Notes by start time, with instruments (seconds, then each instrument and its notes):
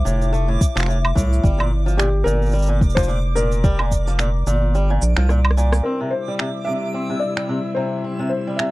Already playing: felt piano C5, synth texture D6
0.05 analog synth bass F1, steel-string acoustic guitar A2, shaker
0.22 shaker
0.33 steel-string acoustic guitar A3, shaker
0.48 steel-string acoustic guitar A2
0.61 kick, shaker
0.76 analog synth bass F1, steel-string acoustic guitar F3, finger snap, shaker
0.80 finger snap
0.83 finger snap
0.86 steel-string acoustic guitar A2, finger snap, shaker
1.05 low woodblock
1.15 analog synth bass C2, steel-string acoustic guitar A2, kick, shaker
1.33 shaker
1.43 analog synth bass G1, steel-string acoustic guitar G3, kick, shaker
1.59 steel-string acoustic guitar A#2, low woodblock
1.86 steel-string acoustic guitar F3, shaker
1.97 steel-string acoustic guitar A#2, felt piano G4, finger snap, shaker
2.24 analog synth bass G1, steel-string acoustic guitar A#2, felt piano A#4, shaker
2.42 shaker
2.46 shaker
2.49 shaker
2.52 steel-string acoustic guitar G3, shaker
2.55 shaker
2.59 shaker
2.62 shaker
2.66 steel-string acoustic guitar A#2, shaker
2.81 analog synth bass F1, kick, shaker
2.90 shaker
2.95 steel-string acoustic guitar F3, felt piano C5, finger snap, kick, shaker
3.03 shaker
3.08 steel-string acoustic guitar A#2
3.35 steel-string acoustic guitar A#2, felt piano A#4, shaker
3.52 shaker
3.64 steel-string acoustic guitar G3, kick, shaker
3.79 steel-string acoustic guitar A#2, low woodblock
3.91 kick, shaker
4.07 steel-string acoustic guitar F3, shaker
4.19 steel-string acoustic guitar A#2, finger snap, shaker
4.47 analog synth bass G1, steel-string acoustic guitar A#2, shaker
4.75 steel-string acoustic guitar G3, shaker
4.90 steel-string acoustic guitar A#2
5.02 analog synth bass A#1, shaker
5.17 analog synth bass C2, steel-string acoustic guitar F3, finger snap
5.29 steel-string acoustic guitar A#2, cross-stick, shaker
5.45 low woodblock
5.51 cross-stick
5.57 steel-string acoustic guitar A#2, shaker
5.72 cross-stick, shaker
5.83 string quartet C3 G3 E4, steel-string acoustic guitar C4, felt piano A#4, synth texture E6
6.01 steel-string acoustic guitar C3
6.11 felt piano C5
6.28 steel-string acoustic guitar G3
6.39 steel-string acoustic guitar C3, finger snap
6.65 steel-string acoustic guitar C3, felt piano E5
6.94 steel-string acoustic guitar C4
7.10 steel-string acoustic guitar C3
7.20 felt piano D5
7.37 steel-string acoustic guitar G3, finger snap
7.49 steel-string acoustic guitar C3
7.75 steel-string acoustic guitar C3, felt piano C5
8.04 steel-string acoustic guitar C4
8.19 steel-string acoustic guitar C3
8.29 felt piano C5
8.47 steel-string acoustic guitar G3
8.56 steel-string acoustic guitar C3, felt piano E5, finger snap